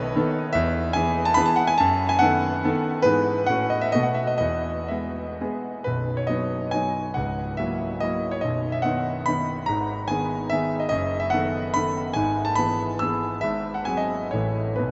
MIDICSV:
0, 0, Header, 1, 2, 480
1, 0, Start_track
1, 0, Key_signature, 4, "major"
1, 0, Tempo, 408163
1, 646, Time_signature, 3, 2, 24, 8
1, 2093, Tempo, 426439
1, 4013, Tempo, 455927
1, 4973, Tempo, 497100
1, 5933, Tempo, 459067
1, 6413, Key_signature, 5, "major"
1, 6413, Tempo, 434468
1, 8813, Tempo, 413508
1, 12168, Key_signature, 4, "major"
1, 14093, Tempo, 426136
1, 15053, Tempo, 447761
1, 16646, End_track
2, 0, Start_track
2, 0, Title_t, "Grand piano"
2, 0, Program_c, 0, 0
2, 0, Control_c, 0, 64, 127
2, 0, Note_on_c, 0, 35, 81
2, 0, Note_on_c, 0, 51, 62
2, 0, Note_on_c, 0, 59, 61
2, 0, Note_on_c, 0, 69, 68
2, 0, Note_on_c, 0, 71, 123
2, 0, Note_on_c, 0, 73, 111
2, 0, Note_on_c, 0, 75, 123
2, 130, Note_off_c, 0, 51, 0
2, 131, Note_off_c, 0, 59, 0
2, 135, Note_off_c, 0, 69, 0
2, 184, Note_on_c, 0, 51, 78
2, 187, Note_on_c, 0, 59, 72
2, 192, Control_c, 0, 64, 0
2, 194, Note_on_c, 0, 69, 80
2, 196, Note_off_c, 0, 35, 0
2, 199, Note_off_c, 0, 73, 0
2, 200, Note_off_c, 0, 75, 0
2, 603, Note_off_c, 0, 51, 0
2, 605, Note_off_c, 0, 59, 0
2, 609, Note_off_c, 0, 69, 0
2, 618, Note_on_c, 0, 76, 127
2, 633, Note_off_c, 0, 71, 0
2, 644, Note_on_c, 0, 40, 84
2, 828, Control_c, 0, 64, 127
2, 1098, Note_on_c, 0, 80, 127
2, 1118, Note_off_c, 0, 40, 0
2, 1120, Note_off_c, 0, 76, 0
2, 1123, Note_on_c, 0, 52, 65
2, 1128, Note_on_c, 0, 59, 61
2, 1133, Note_on_c, 0, 68, 69
2, 1475, Note_on_c, 0, 81, 126
2, 1485, Note_off_c, 0, 80, 0
2, 1570, Note_off_c, 0, 52, 0
2, 1572, Note_off_c, 0, 59, 0
2, 1575, Note_off_c, 0, 68, 0
2, 1580, Note_on_c, 0, 83, 127
2, 1608, Note_off_c, 0, 81, 0
2, 1614, Note_on_c, 0, 52, 76
2, 1618, Note_on_c, 0, 68, 84
2, 1619, Note_on_c, 0, 59, 76
2, 1638, Control_c, 0, 64, 0
2, 1713, Note_on_c, 0, 81, 99
2, 1718, Note_off_c, 0, 83, 0
2, 1834, Note_on_c, 0, 78, 104
2, 1844, Note_off_c, 0, 81, 0
2, 1964, Note_off_c, 0, 78, 0
2, 1969, Note_on_c, 0, 80, 126
2, 2042, Note_off_c, 0, 52, 0
2, 2044, Note_off_c, 0, 68, 0
2, 2045, Note_off_c, 0, 59, 0
2, 2090, Note_off_c, 0, 80, 0
2, 2090, Note_on_c, 0, 81, 127
2, 2117, Note_on_c, 0, 42, 83
2, 2322, Control_c, 0, 64, 127
2, 2442, Note_on_c, 0, 80, 124
2, 2444, Note_off_c, 0, 81, 0
2, 2552, Note_on_c, 0, 78, 127
2, 2567, Note_off_c, 0, 42, 0
2, 2567, Note_off_c, 0, 80, 0
2, 2583, Note_on_c, 0, 51, 64
2, 2586, Note_on_c, 0, 59, 61
2, 2592, Note_on_c, 0, 69, 69
2, 3019, Note_off_c, 0, 51, 0
2, 3021, Note_off_c, 0, 59, 0
2, 3023, Note_off_c, 0, 69, 0
2, 3065, Control_c, 0, 64, 0
2, 3066, Note_on_c, 0, 51, 75
2, 3070, Note_on_c, 0, 59, 72
2, 3071, Note_on_c, 0, 69, 79
2, 3481, Note_off_c, 0, 51, 0
2, 3483, Note_off_c, 0, 59, 0
2, 3483, Note_off_c, 0, 69, 0
2, 3494, Note_on_c, 0, 71, 125
2, 3513, Note_off_c, 0, 78, 0
2, 3522, Note_on_c, 0, 44, 78
2, 3524, Note_on_c, 0, 52, 58
2, 3531, Note_on_c, 0, 59, 56
2, 3534, Note_on_c, 0, 68, 57
2, 3737, Control_c, 0, 64, 127
2, 3971, Note_off_c, 0, 52, 0
2, 3974, Note_off_c, 0, 59, 0
2, 3975, Note_off_c, 0, 68, 0
2, 3990, Note_on_c, 0, 78, 117
2, 4000, Note_off_c, 0, 44, 0
2, 4000, Note_off_c, 0, 71, 0
2, 4018, Note_on_c, 0, 45, 73
2, 4019, Note_on_c, 0, 57, 54
2, 4024, Control_c, 0, 64, 0
2, 4024, Note_on_c, 0, 61, 55
2, 4032, Note_on_c, 0, 66, 53
2, 4211, Control_c, 0, 64, 127
2, 4237, Note_on_c, 0, 75, 87
2, 4248, Note_off_c, 0, 78, 0
2, 4359, Note_on_c, 0, 76, 98
2, 4367, Note_off_c, 0, 75, 0
2, 4456, Note_off_c, 0, 57, 0
2, 4459, Note_off_c, 0, 61, 0
2, 4463, Note_off_c, 0, 66, 0
2, 4473, Note_on_c, 0, 75, 114
2, 4484, Note_off_c, 0, 45, 0
2, 4486, Note_off_c, 0, 76, 0
2, 4497, Note_on_c, 0, 57, 53
2, 4498, Note_on_c, 0, 47, 73
2, 4504, Note_on_c, 0, 59, 52
2, 4508, Control_c, 0, 64, 0
2, 4513, Note_on_c, 0, 66, 53
2, 4585, Note_on_c, 0, 78, 78
2, 4602, Note_off_c, 0, 75, 0
2, 4694, Control_c, 0, 64, 127
2, 4708, Note_on_c, 0, 76, 78
2, 4717, Note_off_c, 0, 78, 0
2, 4839, Note_off_c, 0, 76, 0
2, 4841, Note_on_c, 0, 75, 86
2, 4932, Note_off_c, 0, 57, 0
2, 4935, Note_off_c, 0, 59, 0
2, 4936, Note_off_c, 0, 75, 0
2, 4939, Note_off_c, 0, 66, 0
2, 4952, Note_on_c, 0, 75, 100
2, 4960, Note_off_c, 0, 47, 0
2, 4980, Note_on_c, 0, 40, 66
2, 4984, Control_c, 0, 64, 0
2, 5204, Control_c, 0, 64, 127
2, 5442, Note_on_c, 0, 76, 73
2, 5443, Note_off_c, 0, 40, 0
2, 5444, Note_off_c, 0, 75, 0
2, 5468, Note_on_c, 0, 56, 49
2, 5473, Note_on_c, 0, 59, 46
2, 5475, Note_on_c, 0, 68, 50
2, 5902, Note_off_c, 0, 56, 0
2, 5905, Note_off_c, 0, 59, 0
2, 5906, Note_off_c, 0, 68, 0
2, 5928, Note_off_c, 0, 76, 0
2, 5945, Control_c, 0, 64, 0
2, 5952, Note_on_c, 0, 56, 54
2, 5956, Note_on_c, 0, 59, 53
2, 5959, Note_on_c, 0, 68, 60
2, 6380, Note_off_c, 0, 56, 0
2, 6383, Note_off_c, 0, 59, 0
2, 6384, Note_off_c, 0, 68, 0
2, 6404, Note_on_c, 0, 71, 89
2, 6429, Note_on_c, 0, 35, 58
2, 6430, Note_on_c, 0, 23, 51
2, 6641, Control_c, 0, 64, 127
2, 6765, Note_on_c, 0, 73, 79
2, 6769, Note_off_c, 0, 71, 0
2, 6875, Note_on_c, 0, 75, 92
2, 6895, Note_off_c, 0, 73, 0
2, 6902, Note_on_c, 0, 54, 46
2, 6909, Note_on_c, 0, 59, 46
2, 6912, Note_on_c, 0, 63, 47
2, 7344, Note_off_c, 0, 54, 0
2, 7348, Note_off_c, 0, 59, 0
2, 7349, Note_off_c, 0, 63, 0
2, 7366, Note_on_c, 0, 80, 104
2, 7375, Note_off_c, 0, 75, 0
2, 7396, Control_c, 0, 64, 0
2, 7396, Note_on_c, 0, 54, 47
2, 7401, Note_on_c, 0, 59, 45
2, 7405, Note_on_c, 0, 63, 48
2, 7819, Note_off_c, 0, 54, 0
2, 7821, Note_off_c, 0, 59, 0
2, 7823, Note_off_c, 0, 35, 0
2, 7823, Note_off_c, 0, 63, 0
2, 7824, Note_off_c, 0, 23, 0
2, 7838, Note_on_c, 0, 78, 80
2, 7848, Note_off_c, 0, 80, 0
2, 7862, Note_on_c, 0, 25, 54
2, 7863, Note_on_c, 0, 37, 56
2, 8073, Control_c, 0, 64, 127
2, 8314, Note_on_c, 0, 76, 90
2, 8327, Note_off_c, 0, 78, 0
2, 8342, Note_on_c, 0, 54, 48
2, 8348, Note_on_c, 0, 58, 45
2, 8349, Note_on_c, 0, 64, 50
2, 8772, Note_off_c, 0, 54, 0
2, 8775, Note_off_c, 0, 58, 0
2, 8775, Note_off_c, 0, 64, 0
2, 8792, Note_on_c, 0, 75, 97
2, 8802, Note_off_c, 0, 76, 0
2, 8821, Note_on_c, 0, 54, 49
2, 8828, Note_on_c, 0, 58, 45
2, 8829, Note_on_c, 0, 64, 53
2, 8830, Control_c, 0, 64, 0
2, 9151, Note_on_c, 0, 73, 80
2, 9161, Note_off_c, 0, 75, 0
2, 9246, Note_off_c, 0, 25, 0
2, 9246, Note_off_c, 0, 54, 0
2, 9247, Note_off_c, 0, 37, 0
2, 9249, Note_off_c, 0, 58, 0
2, 9250, Note_off_c, 0, 64, 0
2, 9264, Note_on_c, 0, 75, 88
2, 9278, Note_off_c, 0, 73, 0
2, 9293, Note_on_c, 0, 35, 59
2, 9294, Note_on_c, 0, 23, 55
2, 9526, Control_c, 0, 64, 127
2, 9625, Note_on_c, 0, 76, 85
2, 9635, Note_off_c, 0, 75, 0
2, 9739, Note_on_c, 0, 78, 96
2, 9761, Note_off_c, 0, 76, 0
2, 9764, Note_on_c, 0, 51, 48
2, 9771, Note_on_c, 0, 59, 47
2, 9779, Note_on_c, 0, 63, 53
2, 10215, Note_off_c, 0, 51, 0
2, 10219, Note_off_c, 0, 59, 0
2, 10222, Note_off_c, 0, 63, 0
2, 10245, Note_on_c, 0, 83, 103
2, 10249, Note_off_c, 0, 78, 0
2, 10272, Note_on_c, 0, 51, 52
2, 10278, Note_on_c, 0, 59, 48
2, 10281, Control_c, 0, 64, 0
2, 10283, Note_on_c, 0, 63, 53
2, 10693, Note_off_c, 0, 51, 0
2, 10696, Note_off_c, 0, 23, 0
2, 10696, Note_off_c, 0, 35, 0
2, 10696, Note_off_c, 0, 59, 0
2, 10699, Note_off_c, 0, 63, 0
2, 10715, Note_on_c, 0, 82, 108
2, 10726, Note_off_c, 0, 83, 0
2, 10739, Note_on_c, 0, 32, 58
2, 10741, Note_on_c, 0, 44, 65
2, 10936, Control_c, 0, 64, 127
2, 11196, Note_on_c, 0, 80, 106
2, 11211, Note_off_c, 0, 82, 0
2, 11223, Note_on_c, 0, 51, 51
2, 11231, Note_on_c, 0, 59, 53
2, 11235, Note_on_c, 0, 68, 57
2, 11664, Note_off_c, 0, 51, 0
2, 11667, Note_off_c, 0, 59, 0
2, 11670, Note_off_c, 0, 68, 0
2, 11683, Note_on_c, 0, 76, 113
2, 11697, Note_off_c, 0, 80, 0
2, 11716, Note_on_c, 0, 51, 52
2, 11717, Note_on_c, 0, 59, 52
2, 11720, Note_on_c, 0, 68, 56
2, 11725, Control_c, 0, 64, 0
2, 12031, Note_on_c, 0, 75, 80
2, 12041, Note_off_c, 0, 76, 0
2, 12123, Note_off_c, 0, 75, 0
2, 12125, Note_off_c, 0, 51, 0
2, 12126, Note_off_c, 0, 32, 0
2, 12126, Note_off_c, 0, 59, 0
2, 12127, Note_off_c, 0, 44, 0
2, 12127, Note_off_c, 0, 68, 0
2, 12140, Note_on_c, 0, 75, 109
2, 12167, Note_on_c, 0, 42, 69
2, 12169, Note_on_c, 0, 30, 60
2, 12381, Control_c, 0, 64, 127
2, 12498, Note_on_c, 0, 76, 96
2, 12506, Note_off_c, 0, 75, 0
2, 12618, Note_on_c, 0, 78, 106
2, 12635, Note_off_c, 0, 76, 0
2, 12648, Note_on_c, 0, 51, 53
2, 12654, Note_on_c, 0, 59, 54
2, 12657, Note_on_c, 0, 69, 58
2, 13098, Note_off_c, 0, 51, 0
2, 13101, Note_off_c, 0, 59, 0
2, 13103, Note_off_c, 0, 69, 0
2, 13123, Note_on_c, 0, 83, 115
2, 13129, Note_off_c, 0, 78, 0
2, 13152, Note_on_c, 0, 51, 55
2, 13153, Note_on_c, 0, 59, 54
2, 13157, Control_c, 0, 64, 0
2, 13160, Note_on_c, 0, 69, 59
2, 13564, Note_off_c, 0, 42, 0
2, 13565, Note_off_c, 0, 30, 0
2, 13566, Note_off_c, 0, 51, 0
2, 13566, Note_off_c, 0, 59, 0
2, 13570, Note_off_c, 0, 69, 0
2, 13586, Note_on_c, 0, 80, 109
2, 13597, Note_off_c, 0, 83, 0
2, 13612, Note_on_c, 0, 44, 67
2, 13615, Note_on_c, 0, 32, 60
2, 13838, Control_c, 0, 64, 127
2, 13949, Note_on_c, 0, 81, 104
2, 13957, Note_off_c, 0, 80, 0
2, 14074, Note_on_c, 0, 83, 104
2, 14086, Note_off_c, 0, 81, 0
2, 14101, Note_on_c, 0, 52, 51
2, 14105, Note_on_c, 0, 59, 54
2, 14112, Note_on_c, 0, 68, 54
2, 14542, Note_off_c, 0, 52, 0
2, 14544, Note_off_c, 0, 59, 0
2, 14547, Note_off_c, 0, 68, 0
2, 14567, Note_on_c, 0, 88, 111
2, 14573, Note_off_c, 0, 83, 0
2, 14594, Control_c, 0, 64, 0
2, 14595, Note_on_c, 0, 52, 53
2, 14601, Note_on_c, 0, 68, 56
2, 14602, Note_on_c, 0, 59, 54
2, 15015, Note_off_c, 0, 44, 0
2, 15016, Note_off_c, 0, 32, 0
2, 15016, Note_off_c, 0, 52, 0
2, 15019, Note_off_c, 0, 68, 0
2, 15020, Note_off_c, 0, 59, 0
2, 15037, Note_on_c, 0, 76, 106
2, 15047, Note_off_c, 0, 88, 0
2, 15066, Note_on_c, 0, 32, 57
2, 15066, Note_on_c, 0, 44, 64
2, 15252, Control_c, 0, 64, 127
2, 15393, Note_off_c, 0, 76, 0
2, 15395, Note_on_c, 0, 78, 77
2, 15512, Note_on_c, 0, 80, 97
2, 15523, Note_off_c, 0, 78, 0
2, 15536, Note_on_c, 0, 54, 46
2, 15539, Note_on_c, 0, 60, 46
2, 15545, Note_on_c, 0, 68, 51
2, 15640, Note_on_c, 0, 75, 87
2, 15645, Note_off_c, 0, 80, 0
2, 15981, Note_off_c, 0, 54, 0
2, 15982, Note_off_c, 0, 60, 0
2, 15985, Note_off_c, 0, 68, 0
2, 15995, Note_off_c, 0, 32, 0
2, 15995, Note_off_c, 0, 44, 0
2, 16002, Note_on_c, 0, 73, 80
2, 16013, Note_off_c, 0, 75, 0
2, 16026, Note_on_c, 0, 33, 50
2, 16028, Control_c, 0, 64, 0
2, 16030, Note_on_c, 0, 52, 43
2, 16031, Note_on_c, 0, 45, 58
2, 16036, Note_on_c, 0, 57, 44
2, 16040, Note_on_c, 0, 64, 44
2, 16252, Control_c, 0, 64, 127
2, 16457, Note_off_c, 0, 52, 0
2, 16460, Note_off_c, 0, 57, 0
2, 16461, Note_off_c, 0, 64, 0
2, 16482, Note_on_c, 0, 71, 73
2, 16483, Note_off_c, 0, 33, 0
2, 16485, Note_off_c, 0, 73, 0
2, 16486, Note_off_c, 0, 45, 0
2, 16504, Control_c, 0, 64, 0
2, 16507, Note_on_c, 0, 35, 46
2, 16507, Note_on_c, 0, 47, 51
2, 16646, Note_off_c, 0, 35, 0
2, 16646, Note_off_c, 0, 47, 0
2, 16646, Note_off_c, 0, 71, 0
2, 16646, End_track
0, 0, End_of_file